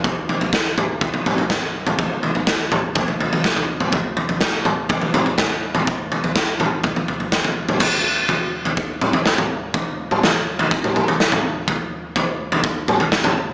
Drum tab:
CC |----------------|----------------|----------------|----------------|
SD |----o-------o---|----o-------o---|----o-------o---|----o-------o---|
T2 |------o---o-o--o|------o--------o|------o---o-o--o|------o--------o|
FT |o-oo--o-oooo---o|o-oo--o-oooo-o-o|o-oo--o-oooo---o|o-oo--o-oooo-o-o|
BD |o---o---o---o---|o---o---o---o---|o---o---o---o---|o---o---o---o---|

CC |x---------------|----------------|----------------|
SD |------------o---|----o-------o---|------------o---|
T2 |----------o--o--|---o-----oo--o--|----------o--o--|
FT |o---o--o---o-o--|o---o--o---o-o--|o---o--o---o-o--|
BD |o---o---o---o---|o-------o-------|o---o---o---o---|